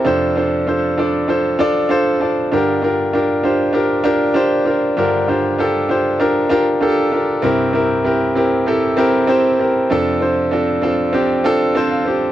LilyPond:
<<
  \new Staff \with { instrumentName = "Grand piano" } { \time 4/4 \key g \minor \tempo 4 = 97 << { r2. f''8 a''8 | r1 | r1 | r1 |
r2. a''16 f''8. | } \\ { <d' f' a' c''>8 <d' f' a' c''>8 <d' f' a' c''>8 <d' f' a' d''>8 <d' f' a' c''>8 <d' f' a' d''>8 <d' f' a' c''>8 <d' f' a' d''>8 | <d' f' g' bes'>8 <d' f' g' bes'>8 <d' f' g' bes'>8 <d' f' g' c''>8 <d' f' g' bes'>8 <d' f' g' bes'>8 <d' f' g' c''>8 <d' f' g' bes'>8 | <d' f' g' bes'>8 <d' f' g' c''>8 <d' f' g' a'>8 <d' f' g' c''>8 <d' f' g' bes'>8 <d' f' g' bes'>8 <d' f' g' a'>8 <d' f' g' bes'>8 | <c' e' g' bes'>8 <c' e' g' bes'>8 <c' e' g' bes'>8 <c' e' g' bes'>8 <c' e' g' a'>8 <c' e' g' bes'>8 <c' e' g' c''>8 <c' e' g' bes'>8 |
<c' d' f' a'>8 <c' d' f' c''>8 <c' d' f' a'>8 <c' d' f' a'>8 <c' d' f' g'>8 <c' d' f' a'>8 <c' d' f' c''>8 <c' d' f' g'>8 | } >> }
  \new Staff \with { instrumentName = "Grand piano" } { \clef bass \time 4/4 \key g \minor <f, c>1 | <g, d>1 | <g, d>1 | <c, g,>1 |
<f, c>1 | }
>>